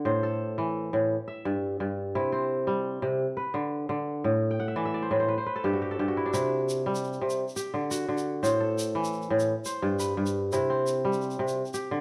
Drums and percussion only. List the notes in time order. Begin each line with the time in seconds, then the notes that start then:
6.34 shaker
6.69 shaker
6.95 shaker
7.04 shaker
7.13 shaker
7.30 shaker
7.48 shaker
7.57 shaker
7.91 shaker
8.18 shaker
8.44 shaker
8.79 shaker
9.04 shaker
9.13 shaker
9.22 shaker
9.39 shaker
9.65 shaker
10.00 shaker
10.26 shaker
10.52 shaker
10.87 shaker
11.13 shaker
11.21 shaker
11.31 shaker
11.48 shaker
11.65 shaker
11.74 shaker